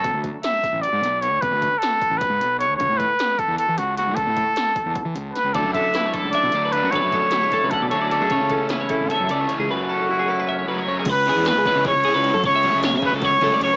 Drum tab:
CC |-------|-------|-------|-------|
RD |-------|-------|-------|-------|
HH |xxxxxxx|xxxxxxx|xxxxxxx|xxxxxxx|
SD |--oo-o-|--o-o--|--o---o|--o---o|
BD |oo-o---|oo-oo--|oo-o---|oo-oo--|

CC |-------|-------|-------|-------|
RD |-------|-------|-------|-------|
HH |xxxxxxx|xxxxxxx|xxxxxxx|-------|
SD |--o----|--o---o|--o----|-------|
BD |oo-o---|oo-oo--|oo-o---|-------|

CC |x------|-------|
RD |xxxxxxx|xxxxxxx|
HH |-------|-------|
SD |--oo---|--o-oo-|
BD |o--oo--|o--oo--|